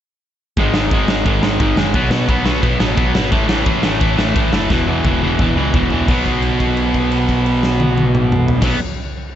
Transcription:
0.57 G#1 G#2 D#3 G#3, kick, ride
0.74 G#2 D#3 G#3, snare
0.91 G#1 G#2 D#3 G#3, kick, ride
1.08 G#2 D#3 G#3, snare
1.25 G#1 G#2 D#3 G#3, kick, ride
1.42 G#1 G#2 D#3 G#3, snare
1.60 G#1 G#2 D#3 G#3, kick, ride
1.76 F#1 G#2 D#3 G#3, snare
1.94 B1 B2 F#3 B3, kick, ride
2.10 B2 F#3 B3, snare
2.28 B1 B2 F#3 B3, kick, ride
2.45 B2 F#3 B3, snare
2.62 B1 B2 F#3 B3, kick, ride
2.80 A1 B2 F#3 B3, snare
2.96 B1 B2 F#3 B3, kick, ride
3.14 G#1 B2 F#3 B3, snare
3.31 A1 A2 E3 A3, kick, ride
3.47 A2 E3 A3, snare
3.65 A1 A2 E3 A3, kick, ride
3.83 A2 E3 A3, snare
3.99 A1 A2 E3 A3, kick, ride
4.17 A1 A2 E3 A3, snare
4.35 A1 A2 E3 A3, kick, ride
4.52 F#1 A2 E3 A3, snare
4.70 E1 E2 B2 E3, kick, snare
4.88 E2 B2 E3
5.04 E1 E2 B2 E3, kick, high tom
5.22 E2 B2 E3, high tom
5.39 E1 E2 B2 E3, kick, mid tom
5.56 C#2 E2 B2 E3
5.74 E1 E2 B2 E3, kick, floor tom
5.90 E1 E2 B2 E3, floor tom
6.08 B1 B2 F#3, kick, crash
6.12 B3
6.26 kick, crash
6.42 crash
6.60 kick, crash
6.77 crash
6.94 kick, crash
7.12 crash
7.29 kick, crash
7.46 crash
7.63 snare
7.80 high tom
7.98 high tom
8.15 mid tom
8.32 mid tom
8.48 floor tom
8.61 B1 B2 F#3, kick, snare, crash
8.65 B3

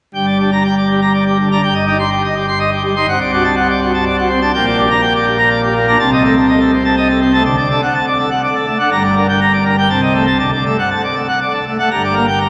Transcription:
0.14 G1 G2 G5
0.26 D5
0.39 D4 G4
0.52 A#5
0.64 G5
0.78 D5
0.90 G4
1.02 A#5
1.14 D5
1.27 G4
1.39 D3
1.51 D4 A#5
1.63 G1 G2 G5
1.74 D#5
1.87 D#4 G4
1.99 C6
2.11 G5
2.24 D#5
2.35 G4
2.48 C6
2.59 D#5
2.72 G4
2.84 G3
2.96 D#4 C6
3.08 C2 C3 F#5
3.21 D5
3.33 D4 F#4
3.44 A5
3.57 F#5
3.70 D5
3.82 F#4
3.94 A5
4.06 D5
4.18 F#4
4.29 C4
4.42 D4 A5
4.54 A#1 A#2 G5
4.66 D5
4.77 D4 G4
4.90 A#5
5.01 G5
5.15 D5
5.26 G4
5.38 A#5
5.50 D5
5.63 G4
5.75 A#3
5.88 D4 A#5
5.99 C2 C3 A5
6.13 D#5
6.24 A3 A4
6.37 A5
6.48 D#5
6.61 A4
6.73 C4
6.85 A5
6.97 D#5
7.09 A4
7.21 C4
7.34 A3 A5
7.45 D2 D3 A5
7.57 D5
7.70 D4 A4
7.83 F#5
7.94 A5
8.07 D5
8.19 A4
8.31 F#5
8.43 D5
8.55 A4
8.67 A3
8.79 D4 F#5
8.92 G1 G2 A#5
9.03 D5
9.16 D4 A#4
9.29 G5
9.41 A#5
9.53 D5
9.65 A#4
9.78 G5
9.90 C2 C3 A5
10.02 D#5
10.14 A3 A4
10.27 A5
10.39 D2 D3 A5
10.53 D5
10.66 A3 A4
10.79 F#5
10.91 A5
11.04 D5
11.16 A4
11.28 F#5
11.41 D5
11.54 A4
11.67 A3
11.79 A3 F#5
11.91 G1 G2 A#5
12.04 D5
12.15 A#3 A#4
12.28 G5
12.40 A#5

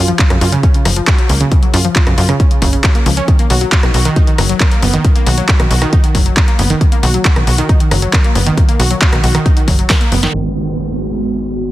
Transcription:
Already playing: F#2
0.08 F3, closed hi-hat
0.19 F4, kick, clap, closed hi-hat
0.30 F#2 C#3, cross-stick, closed hi-hat
0.41 F#2 F4, open hi-hat
0.52 C#3, closed hi-hat
0.63 C#4, kick, closed hi-hat
0.74 C#3, closed hi-hat
0.85 F#1 F3, cross-stick, open hi-hat
0.96 F3, closed hi-hat
1.07 F#4, kick, clap, closed hi-hat
1.18 F#3, closed hi-hat
1.29 C#2 A#3, open hi-hat
1.41 C#3, closed hi-hat
1.52 C#3, kick, closed hi-hat
1.63 F#3, closed hi-hat
1.74 F#2 F4, open hi-hat
1.85 F3, closed hi-hat
1.96 F4, kick, clap, closed hi-hat
2.07 F#2 C#3, cross-stick, closed hi-hat
2.18 F#2 F4, open hi-hat
2.29 C#3, cross-stick, closed hi-hat
2.40 C#4, kick, closed hi-hat
2.51 C#3, closed hi-hat
2.62 F#1 C#3, kick, open hi-hat
2.73 C#3, closed hi-hat
2.84 F#3, kick, clap, closed hi-hat
2.95 A#3, closed hi-hat
3.06 C#2 F3, open hi-hat
3.17 C#4, closed hi-hat
3.28 D#3, kick, closed hi-hat
3.39 A#3, closed hi-hat
3.50 B1 F#4, open hi-hat
3.61 F#3, closed hi-hat
3.72 F#4, kick, clap, closed hi-hat
3.83 B1 D#3, cross-stick, closed hi-hat
3.94 B1 F#4, open hi-hat
4.05 D#3, closed hi-hat
4.16 D#4, kick, closed hi-hat
4.27 D#3, closed hi-hat
4.38 F#1 F#3, cross-stick, open hi-hat
4.49 F#3, closed hi-hat
4.60 A#4, kick, clap, closed hi-hat
4.71 A#3, closed hi-hat
4.82 F#1 B3, open hi-hat
4.94 D#3, closed hi-hat
5.05 D#3, kick, closed hi-hat
5.16 A#3, closed hi-hat
5.27 B1 F#4, open hi-hat
5.38 F#3, closed hi-hat
5.49 F#4, kick, clap, closed hi-hat
5.60 B1 D#3, cross-stick, closed hi-hat
5.71 B1 F#4, open hi-hat
5.82 D#3, cross-stick, closed hi-hat
5.93 D#4, kick, closed hi-hat
6.04 D#3, closed hi-hat
6.15 F#1 F#3, kick, open hi-hat
6.26 F#3, closed hi-hat
6.37 A#4, kick, clap, closed hi-hat
6.48 A#3, closed hi-hat
6.59 F#1 B3, open hi-hat
6.70 D#3, closed hi-hat
6.81 D#3, kick, closed hi-hat
6.92 A#3, closed hi-hat
7.03 B1 F#4, open hi-hat
7.14 F#3, closed hi-hat
7.25 F#4, kick, clap, closed hi-hat
7.36 B1 D#3, cross-stick, closed hi-hat
7.47 B1 F#4, open hi-hat
7.58 D#3, closed hi-hat
7.69 D#4, kick, closed hi-hat
7.80 D#3, closed hi-hat
7.91 F#1 F#3, cross-stick, open hi-hat
8.02 F#3, closed hi-hat
8.13 A#4, kick, clap, closed hi-hat
8.24 A#3, closed hi-hat
8.35 F#1 B3, open hi-hat
8.47 D#3, closed hi-hat
8.57 D#3, kick, closed hi-hat
8.69 A#3, closed hi-hat
8.80 B1 F#4, open hi-hat
8.91 F#3, closed hi-hat
9.02 F#4, kick, clap, closed hi-hat
9.13 B1 D#3, cross-stick, closed hi-hat
9.24 B1 F#4, open hi-hat
9.35 D#3, cross-stick, closed hi-hat
9.46 D#4, kick, closed hi-hat
9.57 D#3, closed hi-hat
9.68 F#1 F#3, kick, open hi-hat
9.79 F#3, closed hi-hat
9.90 A#4, kick, snare, clap, closed hi-hat
10.01 A#3, closed hi-hat
10.12 F#1 B3, open hi-hat
10.23 D#3, snare, closed hi-hat
10.34 G#1 D#3 G#3 B3 F#4, downlifter
10.56 D#3 G#3 B3 F#4
10.78 D#3 G#3 B3 F#4
10.89 D#3 G#3 B3 F#4
11.11 D#3 G#3 B3 F#4
11.22 D#3 G#3 B3 F#4
11.44 D#3 G#3 B3 F#4
11.66 D#3 G#3 B3 F#4

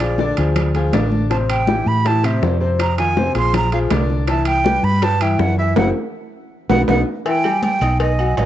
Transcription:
Already playing: A#1 D5
0.00 F3 F4 G#4, high bongo, high conga, high timbale
0.18 D3 D4 D5, high bongo, high conga, low timbale
0.37 D2 F3 F4 G#4, high conga, high timbale
0.56 high bongo, high conga, low conga, high timbale
0.74 F3 F4 G#4, high bongo, high conga, high timbale
0.93 A1 D3 D4 D5, high bongo, low bongo, high conga, high timbale, low timbale
1.12 high bongo, high conga
1.30 C3 C4 C5 A5, high bongo, high conga, high timbale
1.49 G5, high conga, high timbale
1.67 E3 E4 G4, high bongo, high conga, low timbale
1.86 A2 B5, high conga
2.05 E3 E4 G4 A5, high bongo, high conga, high timbale
2.23 C3 C4 C5 E5, high conga, high timbale
2.42 F2, high bongo, low bongo, high conga, low timbale
2.60 C3 C4 C5
2.79 A#5, high bongo, high conga, high timbale
2.98 D#3 D#4 F4 G#5, high bongo, high conga, high timbale
3.17 C3 C4 C5, high bongo, high conga, low timbale
3.35 A#1 F3 F4 G#4 C6, high conga, high timbale
3.54 A#5, high bongo, high conga, low conga, high timbale
3.72 F3 F4 G#4 F5, high bongo, high timbale
3.90 C2 D3 D4 D5, high bongo, low bongo, high conga, high timbale, low timbale
4.10 high bongo
4.28 E3 E4 E5 A5, high bongo, high conga, high timbale
4.45 G5, high conga, high timbale
4.64 G3 G4 B4, high bongo, high conga, low timbale
4.83 G2 B5, high conga
5.02 G3 G4 B4 A5, high bongo, high timbale
5.21 E3 E4 E5 G5, high conga, high timbale
5.39 F#2 F#5, high bongo, low bongo, high conga, low timbale
5.58 E3 E4 E5
5.76 F#1 C4 E4 F#4 F#5, low bongo, high conga, high timbale
6.70 B1 B3 D#4 F#4 F#5, low bongo, high conga, high timbale
6.88 B1 B3 D#4 F#4 F#5, low bongo, high conga, high timbale
7.25 E3 E4 E5 G5, cowbell, high conga, low agogo
7.44 G3 G4 G5, high conga, low agogo
7.62 G5, cowbell, high conga, low timbale
7.81 B1 D#4 D#5 D#6, cowbell, high conga, low agogo
8.00 D#5, cowbell, high conga, low agogo
8.19 F#3 F#4 F#5, high conga, low agogo
8.37 A1 D#5, cowbell, high conga, low timbale, low agogo

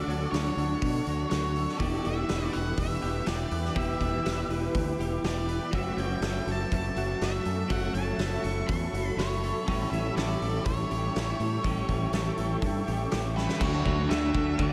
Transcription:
Already playing: D3 F#3 A3 D4 F#4 A4 C#5 D5 F#5 C#6
0.06 D2 A3 D4 F#4 C#5, open hi-hat
0.32 D2 F#3 A3 D4 F#4 A4 C#5, snare, open hi-hat
0.56 D2 A3 D4 F#4 A4, open hi-hat
0.82 B2, kick, open hi-hat
1.05 D2 A3 D4 F#4, open hi-hat
1.29 D2 F#3 A3 D4 F#4 C#5, snare, open hi-hat
1.56 A4, open hi-hat
1.69 snare
1.78 E1 E3 B3 E4 G4 B4 D5 E5 G5 D6, kick, open hi-hat
2.02 E1 B3 E4 G4 D5 E5, open hi-hat
2.27 E1 E3 B3 E4 G4 B4, snare, open hi-hat
2.51 E1 B3 E4 G4 B4 F#5, open hi-hat
2.77 E1 E5, kick, open hi-hat
3.02 E1 B3 E4 G4, open hi-hat
3.26 E1 E3 B3 E4 G4 D5, snare, open hi-hat
3.51 E2 B4, open hi-hat
3.65 snare
3.75 E1 E3 B3 E4 G4 E5, kick, open hi-hat
3.99 E1 B3 E4 G4 D5, kick, open hi-hat
4.25 E1 E3 B3 E4 G4 B4, snare, open hi-hat
4.48 E1 B3 E4 G4 B4, open hi-hat
4.75 D2, kick, open hi-hat
4.98 E1 B3 E4 G4, open hi-hat
5.23 E1 E3 B3 E4 G4, snare, open hi-hat
5.27 D5
5.48 B4, open hi-hat
5.71 F#1 F#3 A3 C#4 F#4 A4 E5 A5 C#6, kick, open hi-hat
5.96 F#1 A3 C#4 F#4 C#5 G5, open hi-hat
6.20 F#1 F#3 A3 C#4 F#4 A4, snare, open hi-hat
6.46 F#1 A3 C#4 F#4 A4, open hi-hat
6.52 A5
6.72 F#1 A5, kick, open hi-hat
6.95 F#1 A3 C#4 F#4, open hi-hat
7.20 F#1 F#3 A3 C#4 F#4 E5, snare, open hi-hat
7.45 F#2 A4, open hi-hat
7.69 F#1 F#3 A3 C#4 F#4 F#5 B5, kick, open hi-hat
7.94 F#1 A3 C#4 F#4 C#5 A5, open hi-hat
8.18 F#1 F#3 A3 C#4 F#4 A4, snare, open hi-hat
8.43 F#1 A3 C#4 F#4 A4 C#6, open hi-hat
8.68 E2 C#6, kick, open hi-hat
8.93 F#1 A3 C#4 F#4, open hi-hat
9.16 F#1 F#3 A3 C#4 F#4 C#5, snare, open hi-hat
9.43 A4, open hi-hat
9.66 A1 A2 E3 G3 C#4 E4 G4 A4 C#5 G5 C#6, kick, open hi-hat
9.91 A1 G3 C#4 E4 C#5 E5, open hi-hat
10.15 A1 E3 G3 C#4 E4 A4 D5, snare, open hi-hat
10.40 A1 G3 C#4 E4 A4, open hi-hat
10.65 A1 C#5, kick, open hi-hat
10.90 A1 G3 C#4 E4 G4, open hi-hat
11.15 A1 E3 G3 C#4 E4 G4, snare, open hi-hat
11.40 A2 A4, open hi-hat
11.63 A1 A2 E3 G3 C#4 E4 G4 A4, kick, open hi-hat
11.89 A1 G3 C#4 E4 C#5, kick, open hi-hat
12.11 A1 E3 G3 C#4 E4 A4, snare, open hi-hat
12.37 A1 G3 C#4 E4 A4, open hi-hat
12.62 G2, kick, open hi-hat
12.86 A1 G3 C#4 E4 G4, open hi-hat
13.11 A1 E3 G3 C#4 E4 G4, snare, open hi-hat
13.37 A4 B4, snare
13.49 snare
13.59 D2 D3 F#3 A3 D4 F#4 A4 F#5 C#6, kick, crash
13.63 C#5
13.84 D2 A3 D4 F#4 C#5, kick
14.09 D2 D3 F#3 A3 D4 F#4 A4 E5, snare, crash
14.34 D2 A3 D4 F#4 A4, kick
14.58 D2 D3 A3 D4 F#4 D5, kick, crash

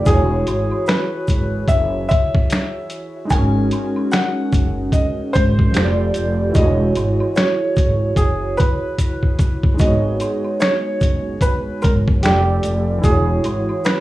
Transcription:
0.01 E3 E4
0.06 E1 F#4 G#4, kick, closed hi-hat, maracas
0.11 G#4 C#5
0.47 G#1, closed hi-hat, high woodblock, maracas
0.71 high woodblock
0.86 B4, finger snap, snare, closed hi-hat, maracas
1.27 G#1, kick, closed hi-hat, maracas
1.68 F#1 E5, kick, closed hi-hat, maracas
2.09 E5, kick, closed hi-hat, high woodblock, maracas
2.35 kick
2.50 finger snap, snare, closed hi-hat, maracas
2.90 closed hi-hat, maracas
3.25 G#3 D#4
3.30 G#1 F#4 A#4 G#5, kick, closed hi-hat, maracas
3.36 C#4 G#4
3.71 closed hi-hat, high woodblock, maracas
3.96 high woodblock
4.12 F#5, finger snap, snare, closed hi-hat, maracas
4.52 F#1, kick, closed hi-hat, maracas
4.92 D#5, kick, closed hi-hat, maracas
5.18 muted upright bass stroke
5.33 G#1 C5, kick, closed hi-hat, high woodblock, maracas
5.59 kick
5.71 F1 F3 F4 G4, closed hi-hat, maracas
5.77 A4 C5, finger snap, snare
5.85 D5
6.14 F1, closed hi-hat, maracas
6.50 E3 E4
6.55 E1 F#4 D#5, kick, closed hi-hat, maracas
6.60 G#4 C#5
6.96 G#1, closed hi-hat, high woodblock, maracas
7.20 high woodblock
7.36 C#5, finger snap, snare, closed hi-hat, maracas
7.76 G#1, kick, closed hi-hat, maracas
8.16 F#1 G#4, kick, closed hi-hat, maracas
8.57 B4, kick, closed hi-hat, high woodblock, maracas
8.98 kick, closed hi-hat, maracas
9.23 kick
9.39 kick, closed hi-hat, maracas
9.63 kick
9.74 G#3 D#4
9.79 G#1 F#4 G#4 D#5, kick, closed hi-hat, maracas
9.85 B3 C#5
10.20 closed hi-hat, high woodblock, maracas
10.44 high woodblock
10.60 C#5, finger snap, snare, closed hi-hat, maracas
11.01 F#1, kick, closed hi-hat, maracas
11.41 B4, kick, closed hi-hat, maracas
11.66 muted upright bass stroke
11.82 G#1 A#4, kick, closed hi-hat, high woodblock, maracas
12.08 kick
12.21 F1 F3 F4 G4, closed hi-hat, maracas
12.25 A4 D5, finger snap, snare
12.63 F1, closed hi-hat, maracas
12.98 E3 E4
13.03 E1 F#4 G#4, kick, closed hi-hat, maracas
13.08 G#4 C#5
13.44 G#1, closed hi-hat, high woodblock, maracas
13.69 high woodblock
13.84 B4, finger snap, snare, closed hi-hat, maracas

